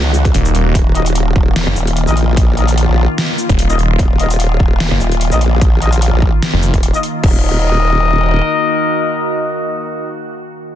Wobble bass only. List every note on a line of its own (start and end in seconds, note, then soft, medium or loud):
0.00 0.33 C#2 medium
0.75 1.34 D#1 loud
1.36 1.65 D#1 medium
1.76 2.06 D#1 loud
2.08 2.87 A#1 medium
2.89 3.07 A#1 loud
3.99 4.59 D#1 loud
4.60 4.90 D#1 loud
5.01 5.30 D#1 loud
5.32 6.11 A#1 loud
6.13 6.31 A#1 loud
6.74 6.92 D#1 loud
7.24 8.41 D#1 loud